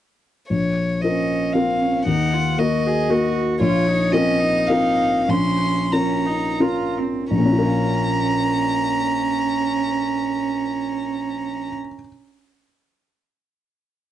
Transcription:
0.49 A#1 C#5
1.01 C#4 F4 A#4 C5 D#5
1.52 C4 F4 A#4 F5
1.80 C#4
2.06 D#2 D#4 F#5
2.33 F4
2.58 A#3 F#4 A#4 D#5
2.86 G#4
3.09 A#3 F#4 A#4
3.60 A#1 F4 C#5
3.89 D#4
4.12 C4 C#4 F4 A#4 D#5
4.39 D#4
4.67 C4 F4 A#4 F5
5.28 A#1 C#4 C6
5.93 C#4 F4 A#4 A#5
6.26 D#4
6.60 C#4 F4 A#4
6.98 C4
7.31 A#1 C#4 A#5
7.38 A#2
7.45 C#4
7.52 F4
7.59 A#4
7.66 F5

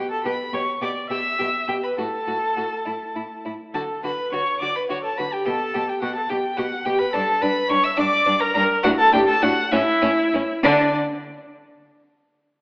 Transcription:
Already playing: G4 G5
0.11 A4 A5
0.24 B2 G4 B4 B5
0.53 B2 G4 C#5 C#6
0.81 B2 G4 D5 D6
1.10 B2 G4 E5 E6
1.39 B2 G4
1.68 B2 G4 G5
1.83 B4 B5
1.98 A2 F#4 A4 A5
2.27 A2 F#4
2.57 A2 F#4
2.85 A2 E4
3.15 A2 E4
3.45 A2 E4
3.74 D3 F#4 A4 A5
4.03 D3 F#4 B4 B5
4.32 D3 F#4 C#5 C#6
4.60 D3 F#4 D5 D6
4.76 B4 B5
4.89 D3 F#4 C#5 C#6
5.04 A4 A5
5.18 D3 F#4 B4 B5
5.32 G4 G5
5.45 B2 G4 A4 A5
5.74 B2 G4
5.88 G4 G5
6.02 B2 F#4 G4 F#5
6.16 A4 A5
6.30 B2 G4 G5
6.57 B2 F#4 G4 F#5
6.85 B2 G4 G5
6.98 B4 B5
7.13 G2 D4 A4 A5
7.42 G2 D4 B4 B5
7.69 G2 D4 C#5 C#6
7.83 E5 E6
7.97 G2 D4 D5 D6
8.26 G2 D4
8.41 A#4 A#5
8.54 G2 D4 A#4 A#5
8.83 A2 D4 F#4 F#5
8.99 A4 A5
9.12 A2 D4 G4 G5
9.28 A4 A5
9.42 A2 D4 F#4 F#5
9.71 A2 C#4 E4 E5
10.02 A2 C#4
10.33 A2 C#4
10.63 D3 D4 D5

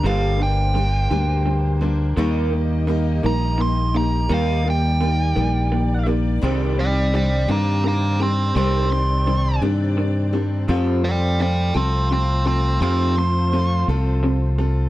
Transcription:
Already playing: A#3 G4
0.04 G1 G2 D3 G3 A#3 D4 G4 C5 F5
0.40 G2 D3 G5
0.74 G2 D3 G3 A#3 D4 G4
1.10 D2 G2 D3 G3 A#3 D4 G4
1.46 G2 D3
1.81 G2 D3 G3 A#3 D4 G4
2.17 D#2 D#3 G3 A#3 D#4 G4 D#5
2.52 D#3 A#3
2.87 D#3 G3 A#3 D#4 G4
3.23 A#1 D#3 G3 A#3 D#4 G4 A#5
3.58 D#3 A#3 C6
3.94 D#3 A#3 D#4 G4 A#5
4.29 D#2 D#3 G3 A#3 D#4 G4 D5
4.34 F5
4.66 D#3 A#3
4.70 G5
5.01 D#3 G3 A#3 D#4 G4
5.36 A#1 D#3 G3 A#3 D#4 G4
5.72 D#3 A#3
6.06 D#3 A#3 D#4 G4
6.41 C2 C3 D#3 G3 C4 D4 G4
6.78 C3 D#3 D5 G5
7.13 C3 D#3 G3 C4 D4 G4 D5 G5
7.48 G2 C3 D#3 G3 C4 D4 G4 F5 A#5
7.84 C3 D#3 F5
7.88 A#5
8.20 C3 D#3 G3 C4 D4 G4 G5 C6
8.55 C2 C3 D#3 G3 C4 D4 G4 D5 G5 C6
8.91 C3 D#3 C6
9.26 C3 D#3 G3 C4 D4 G4
9.62 G2 C3 D#3 G3 C4 D4 G4
9.97 C3 D#3
10.33 C3 D#3 G3 C4 D4 G4
10.67 F2 C3 F3 A3 C4 F4 A4 C5
11.04 F2 C3 D5 G5
11.39 F2 C3 F3 C4 F4 A4 D5 G5
11.74 C2 F2 C3 F3 C4 F4 A4 G5 C6
12.11 F2 C3 G5 C6
12.45 F2 C3 C4 F4 A4 G5 C6
12.81 F2 C3 F3 C4 F4 A4 G5 C6
13.18 F2 C3 C6
13.52 F2 C3 F3 C4 F4 A4
13.88 C2 F2 C3 F3 C4 F4 A4
14.23 F2 C3
14.58 F2 C3 C4 F4 A4

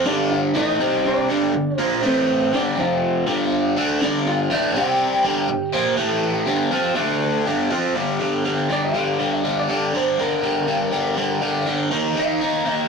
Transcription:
0.05 G2 D3 G3 D4 D5
0.31 F4 F5
0.54 A2 E3 A3 D#4 D#5
0.80 C3 G3 C4
1.06 D4 D5
1.29 G2 D3 G3
1.54 G2 D3
1.78 A#2 F3 A#3 C5
2.02 A2 E3 A3 C4
2.07 C5
2.53 G2 D3 G3 D4 D5
2.77 F2 C3 F3 F4 F5
3.27 G2 D3 G3
3.77 D3 A3 D4
4.01 G2 D3 G3 D4 D5
4.27 F4 F5
4.50 A2 E3 A3 D4 D5
4.75 C3 G3 C4 G4 G5
5.24 G2 D3 G3
5.48 G2 D3
5.73 A#2 F3 A#3
5.97 A2 E3 A3
6.46 G2 D3 G3
6.71 F3 C4 F4
6.95 D3 A3 D4
7.46 G2 D3 G3
7.70 F3 C4 F4
7.95 G2 D3 G3
8.20 G2 D3 G3
8.45 G2 D3 G3
8.69 G2 D3 G3 D5
8.85 F5
8.94 G2 D3 G3
9.18 G2 D3 G3
9.39 D#5
9.44 G2 D3 G3
9.60 D5
9.69 G2 D3 G3 D5
9.93 G2 D3 G3 C5
10.18 G2 D3 G3 A#4
10.42 G2 D3 G3
10.67 G2 D3 G3
10.92 G2 D3 G3
11.16 G2 D3 G3
11.41 G2 D3 G3
11.66 G2 D3 G3
11.91 D#3 A#3 D#4
12.16 D#3 A#3 D#4
12.20 F5
12.41 D#3 A#3 D#4
12.65 D#3 A#3 D#4
12.72 D#5

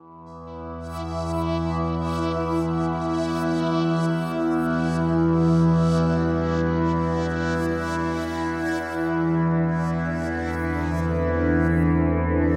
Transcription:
Already playing: E2 E3 E4 E5
0.75 G4
2.27 D5
8.17 E3
8.39 D4
9.26 C5
9.59 A4

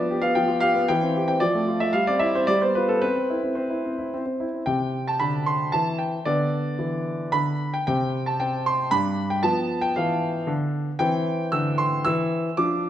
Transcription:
Already playing: F3 B3 D5
0.11 G4
0.21 B3 F5
0.35 F3 G5
0.48 F4
0.60 G4 F5
0.75 B3
0.88 E3 G5
1.02 C4
1.16 G4
1.28 C4 G5
1.40 F3 D5
1.54 A3
1.68 F4
1.80 A3 E5
1.93 G3 F5
2.07 C4 D5
2.19 E4 E5
2.35 C4 C5
2.47 G3 D5
2.62 B3 C5
2.75 F4 B4
2.89 B3 A4
3.01 C4 B4
3.16 C4
3.30 E4
3.43 C4
3.55 C4 C5
3.70 E4
3.85 C4
3.98 E4
4.14 C4
4.26 C4
4.40 E4
4.54 C4
4.66 C3 C4 G5
5.08 A5
5.20 D3 B5
5.46 C6
5.72 E3 A5
5.98 G5
6.25 D3 B3 D5
6.79 E3
7.32 D3 B5
7.74 G5
7.87 C3 C4 G5
8.26 A5
8.40 C4 G5
8.66 C6
8.91 G2 D4 B5
9.30 G5
9.43 F3 B3 A5
9.81 G5
9.96 E3 F5
10.47 D3
10.99 E3 C4 G5
11.52 D3 E6
11.78 C6
12.05 E3 E6
12.57 F3 D4 D6

